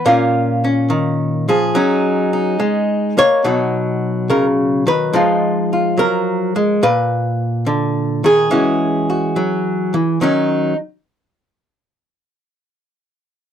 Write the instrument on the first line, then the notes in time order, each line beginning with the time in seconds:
hollow-body jazz guitar
0.06 A#2 A#3 C#4 F4 A#4
0.64 C#4
0.90 D#3
1.48 F3 G#4
1.75 F#3 C#4 D#4
2.33 D#4
2.60 G#3
3.18 A#3 C#5
3.44 B2 F#3 D#4 F#4
4.30 C#3 A#4
4.87 D#3 B4
5.13 F3 G#3 D#4 F4
5.73 F4
5.97 F#3 A#4
6.56 G#3
6.83 A#2 B4
7.66 D3
8.24 D#3 G#4
8.51 E3 G#3 C#4 F#4
9.10 F#4
9.36 F#3
9.94 E3
10.21 D#3 F#3 C#4 D#4